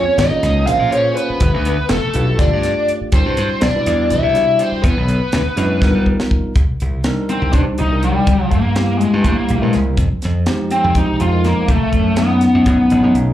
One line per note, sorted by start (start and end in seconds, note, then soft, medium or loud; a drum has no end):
0.00 0.27 A#3 medium
0.00 0.16 C#4 medium
0.00 0.28 C#4 medium
0.00 0.28 F4 medium
0.00 0.28 G#4 medium
0.00 0.14 C#5 loud
0.00 0.28 C#5 medium
0.18 0.29 G#1 medium
0.18 0.65 D#4 medium
0.18 0.64 D#5 loud
0.18 snare loud
0.18 closed hi-hat medium
0.29 0.65 A#3 medium
0.29 0.65 C#4 medium
0.29 0.65 F4 medium
0.29 0.65 G#4 medium
0.29 0.66 D#5 medium
0.29 muted slap bass stroke soft
0.43 0.68 C#2 medium
0.43 snare soft
0.43 closed hi-hat medium
0.67 0.78 A#1 medium
0.67 0.90 A#3 medium
0.67 0.91 C#4 medium
0.67 0.91 F4 medium
0.67 0.91 G#4 medium
0.67 0.91 C5 medium
0.67 0.90 F5 medium
0.67 snare soft
0.67 closed hi-hat medium
0.79 1.01 A#2 medium
0.91 1.41 A#3 medium
0.91 1.41 C#4 medium
0.91 1.16 C#4 medium
0.91 1.41 F4 medium
0.91 1.41 G#4 medium
0.91 1.42 C5 medium
0.91 1.14 C#5 medium
0.91 closed hi-hat medium
1.15 1.87 B3 medium
1.15 1.92 B4 medium
1.15 closed hi-hat medium
1.30 muted slap bass stroke soft
1.40 1.52 G1 medium
1.40 kick loud
1.40 closed hi-hat medium
1.54 1.64 D2 medium
1.65 1.77 D2 loud
1.65 closed hi-hat medium
1.89 2.01 F1 medium
1.89 2.36 A3 medium
1.89 2.40 A4 medium
1.89 snare loud
1.89 closed hi-hat medium
2.14 2.39 B1 medium
2.14 2.38 A3 medium
2.14 2.38 D4 medium
2.14 2.38 F4 medium
2.14 2.38 G4 medium
2.14 2.39 B4 medium
2.14 closed hi-hat medium
2.39 2.50 G1 loud
2.39 3.09 A3 medium
2.39 3.09 D4 medium
2.39 2.91 D4 medium
2.39 3.10 F4 medium
2.39 3.10 G4 medium
2.39 2.90 D5 medium
2.39 3.10 D5 medium
2.39 kick loud
2.39 snare soft
2.39 closed hi-hat medium
2.53 2.74 G2 medium
2.63 snare soft
2.63 closed hi-hat medium
2.88 closed hi-hat medium
3.01 muted slap bass stroke soft
3.12 3.23 C2 medium
3.12 3.71 G3 medium
3.12 3.59 C4 medium
3.12 3.71 D4 medium
3.12 3.71 E4 medium
3.12 3.71 F#4 medium
3.12 3.58 C5 medium
3.12 3.71 C5 medium
3.12 kick loud
3.12 closed hi-hat medium
3.26 3.36 G2 medium
3.37 3.48 G2 medium
3.37 closed hi-hat medium
3.61 3.73 B1 medium
3.61 4.09 D4 medium
3.61 4.12 D5 medium
3.61 snare loud
3.61 closed hi-hat medium
3.74 4.09 G3 medium
3.74 4.09 D4 medium
3.74 4.09 E4 medium
3.74 4.10 F#4 medium
3.74 4.10 B4 medium
3.74 muted slap bass stroke soft
3.86 4.13 E2 medium
3.86 snare soft
3.86 closed hi-hat medium
4.10 4.22 C2 medium
4.10 4.32 G3 medium
4.10 4.32 D4 medium
4.10 4.33 E4 medium
4.10 4.57 E4 medium
4.10 4.33 F#4 medium
4.10 4.34 B4 medium
4.10 4.61 E5 medium
4.10 closed hi-hat medium
4.23 4.44 C3 medium
4.33 4.83 G3 medium
4.33 4.83 D4 medium
4.33 4.84 E4 medium
4.33 4.84 F#4 medium
4.33 4.84 D5 medium
4.33 snare soft
4.33 closed hi-hat medium
4.59 4.84 C4 medium
4.59 4.82 C5 medium
4.59 closed hi-hat medium
4.72 muted slap bass stroke soft
4.83 4.95 E2 medium
4.83 6.02 B4 medium
4.83 kick loud
4.83 closed hi-hat medium
4.88 6.04 B3 medium
4.97 5.08 B1 medium
5.08 5.19 B1 loud
5.08 closed hi-hat medium
5.32 5.44 D2 medium
5.32 snare loud
5.32 closed hi-hat medium
5.46 muted slap bass stroke soft
5.57 5.82 F#2 medium
5.57 5.80 G#3 medium
5.57 5.81 D4 medium
5.57 5.81 E4 medium
5.57 5.81 F#4 medium
5.57 5.81 B4 loud
5.57 snare soft
5.57 closed hi-hat medium
5.82 5.93 G2 medium
5.82 6.52 G3 medium
5.82 6.52 B3 medium
5.82 6.52 D#4 medium
5.82 6.52 F4 medium
5.82 6.53 A#4 loud
5.82 kick loud
5.82 snare medium
5.95 6.16 G3 medium
6.06 kick medium
6.20 snare medium
6.31 kick medium
6.44 muted slap bass stroke soft
6.55 6.66 C2 medium
6.55 kick loud
6.55 closed hi-hat medium
6.69 muted slap bass stroke soft
6.80 7.03 C2 medium
6.80 closed hi-hat soft
7.04 7.51 G3 medium
7.04 7.51 C4 medium
7.04 7.52 D4 medium
7.04 7.52 D#4 medium
7.04 7.52 A#4 loud
7.04 snare loud
7.04 closed hi-hat medium
7.29 7.52 C4 medium
7.29 closed hi-hat medium
7.42 7.52 C2 loud
7.53 7.64 G2 medium
7.53 7.89 G3 medium
7.53 7.89 C4 medium
7.53 7.60 D4 medium
7.53 7.89 D4 medium
7.53 7.89 D#4 medium
7.53 7.89 C5 medium
7.53 kick loud
7.53 closed hi-hat medium
7.67 muted slap bass stroke soft
7.78 8.12 C2 medium
7.78 8.01 D#4 medium
7.78 closed hi-hat soft
7.91 8.28 G3 medium
7.91 8.28 C4 medium
7.91 8.28 D4 medium
7.91 8.28 D#4 medium
7.91 8.28 A#4 medium
8.03 8.51 G3 medium
8.03 closed hi-hat soft
8.17 muted slap bass stroke soft
8.27 8.38 C2 medium
8.27 kick loud
8.27 closed hi-hat medium
8.41 muted slap bass stroke soft
8.51 9.06 G2 medium
8.51 8.98 A#3 medium
8.51 kick medium
8.51 closed hi-hat medium
8.76 9.22 G3 medium
8.76 9.22 A#3 medium
8.76 9.23 C4 medium
8.76 9.23 E4 medium
8.76 9.23 G4 medium
8.76 snare loud
8.76 closed hi-hat medium
8.98 9.22 G#3 medium
8.98 closed hi-hat medium
9.14 9.24 G2 medium
9.23 9.36 G2 medium
9.23 9.60 G3 medium
9.23 9.75 A#3 medium
9.23 9.60 A#3 medium
9.23 9.60 C4 medium
9.23 9.60 E4 medium
9.23 9.61 G4 medium
9.23 kick medium
9.23 closed hi-hat medium
9.49 9.60 A#1 medium
9.49 closed hi-hat medium
9.61 9.73 G2 medium
9.61 9.98 G3 medium
9.61 9.98 A#3 medium
9.61 9.98 C4 medium
9.61 9.98 E4 medium
9.61 9.98 A#4 medium
9.73 9.96 C2 medium
9.73 snare soft
9.73 closed hi-hat soft
9.97 10.09 F2 medium
9.97 kick loud
9.97 closed hi-hat medium
10.12 muted slap bass stroke soft
10.22 10.45 F2 medium
10.22 snare soft
10.22 closed hi-hat medium
10.46 10.93 F3 medium
10.46 10.94 G#3 medium
10.46 10.93 C4 medium
10.46 10.94 D#4 medium
10.46 10.94 G4 loud
10.46 snare loud
10.46 closed hi-hat medium
10.71 10.97 C4 medium
10.71 closed hi-hat medium
10.84 10.95 F2 loud
10.95 11.06 C2 medium
10.95 11.30 F3 medium
10.95 11.30 G#3 medium
10.95 11.31 C4 medium
10.95 11.31 D#4 medium
10.95 11.19 D#4 medium
10.95 11.31 G4 medium
10.95 kick loud
10.95 closed hi-hat medium
11.09 muted slap bass stroke soft
11.20 11.53 F2 medium
11.20 11.46 F4 medium
11.20 closed hi-hat medium
11.32 11.69 F3 medium
11.32 11.69 G#3 medium
11.32 11.69 C4 medium
11.32 11.69 D#4 medium
11.32 11.69 A#4 medium
11.44 11.70 A#3 medium
11.44 snare soft
11.44 closed hi-hat soft
11.57 muted slap bass stroke soft
11.68 11.80 B1 medium
11.68 12.18 A3 medium
11.68 kick loud
11.68 closed hi-hat medium
11.93 12.47 F#2 medium
11.93 kick medium
11.93 closed hi-hat medium
12.16 12.64 F#3 medium
12.16 12.64 A3 medium
12.16 12.64 B3 medium
12.16 13.12 B3 medium
12.16 12.64 C#4 medium
12.16 12.65 D#4 medium
12.16 snare loud
12.16 closed hi-hat medium
12.41 snare soft
12.41 closed hi-hat medium
12.55 12.65 F#2 medium
12.66 12.77 F#2 medium
12.66 13.01 F#3 medium
12.66 13.01 A3 medium
12.66 13.01 B3 medium
12.66 13.02 C#4 medium
12.66 13.02 D#4 medium
12.66 kick loud
12.66 closed hi-hat medium
12.90 13.02 A1 medium
12.90 closed hi-hat medium
13.02 13.14 F#2 medium
13.02 13.33 F#3 loud
13.02 13.33 A3 medium
13.02 13.33 B3 medium
13.02 13.33 C#4 medium
13.02 13.33 D#4 medium
13.15 13.33 B1 medium
13.15 closed hi-hat medium